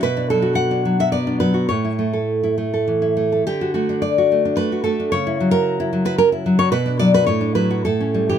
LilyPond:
\new Staff \with { instrumentName = "Nylon-string guitar" } { \time 3/4 \key d \major \tempo 4 = 108 << { b'8 a'8 fis''8. e''16 d''8 b'8 | cis''2~ cis''8 r8 | g'8 fis'8 d''4 b'8 a'8 | cis''8. ais'4 b'16 ais'8. cis''16 |
b'8 d''16 b'16 cis''8 b'8 a'8. g'16 | } \\ { b,16 d'16 fis16 fis'8 d'16 fis16 fis'16 b16 d'16 fis16 fis'16 | a,16 e'16 a16 a'8 e'16 a16 a'16 e16 e'16 a16 a'16 | d16 fis'16 a16 d'8 fis'16 a16 d'16 a16 fis'16 a16 d'16 | cis16 e'16 fis16 fis'8 e'16 fis16 fis'16 cis'16 e'16 fis16 fis'16 |
b,16 d'16 fis16 fis'16 a,16 d'16 fis16 fis'16 a,16 cis'16 g16 e16 | } >> }